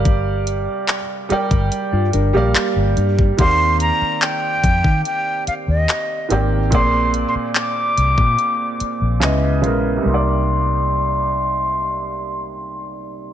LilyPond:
<<
  \new Staff \with { instrumentName = "Flute" } { \time 4/4 \key c \minor \tempo 4 = 72 r1 | c'''8 bes''8 g''4 g''8 f''16 ees''8. r8 | \tuplet 3/2 { c'''8. r16 c'''8 } d'''2 r4 | c'''1 | }
  \new Staff \with { instrumentName = "Clean electric guitar" } { \time 4/4 \key c \minor r2 r16 <f' d''>16 <d' bes'>16 <bes g'>4~ <bes g'>16 | r1 | r1 | r1 | }
  \new Staff \with { instrumentName = "Felt piano" } { \time 4/4 \key c \minor <g g' bes' d'' f''>4 r8 <g g' bes' d'' g''>8. r8 <g g' bes' d'' f''>8. r8 | <ees bes c' g' d'' f''>4~ <ees bes c' g' d'' f''>16 r2 r16 <ees bes c' g' d'' g''>16 r16 | <bes, bes c' aes' d''>4~ <bes, bes c' aes' d''>16 r4. r16 <des aes ces' fes' ees''>8 <des aes ces' fes' bes'>16 r16 | <c g bes ees' d''>1 | }
  \new Staff \with { instrumentName = "Fingered electric bass" } { \clef bass \time 4/4 \key c \minor g,,4 r8. g,,16 r16 g,16 g,,16 bes,,16 r16 g,,16 g,8 | ees,8. r8. f,16 ees16 r8. ees,16 r8 aes,,8 | bes,,8. r8. c,16 bes,16 r8. bes,,16 des,8 bes,,8 | c,1 | }
  \new DrumStaff \with { instrumentName = "Drums" } \drummode { \time 4/4 <hh bd>8 hh8 <hc hh>8 hh16 <hh bd>16 hh8 hh8 <hc hh>8 hh16 bd16 | <hh bd>8 hh8 <hc hh>8 <hh bd>16 bd16 hh8 hh8 <hc hh>8 hh8 | <hh bd>8 hh8 <hc hh>8 hh16 bd16 hh8 hh8 <hc hh>8 hh8 | r4 r4 r4 r4 | }
>>